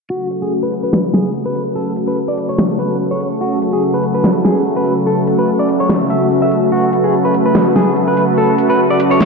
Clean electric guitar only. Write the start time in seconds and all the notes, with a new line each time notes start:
0.10 F#4
0.42 G#4
0.63 B4
0.83 B4
1.14 G#4
1.46 B4
1.76 A4
2.08 B4
2.28 D5
2.49 C#5
2.79 B4
3.11 C#5
3.41 F#4
3.73 G#4
3.94 B4
4.14 B4
4.45 G#4
4.77 B4
5.07 A4
5.39 B4
5.59 D5
5.80 C#5
6.10 E5
6.42 E5
6.72 F#4
7.04 G#4
7.25 B4
7.46 B4
7.76 G#4
8.08 B4
8.38 A4
8.70 B4
8.90 D5
9.11 C#5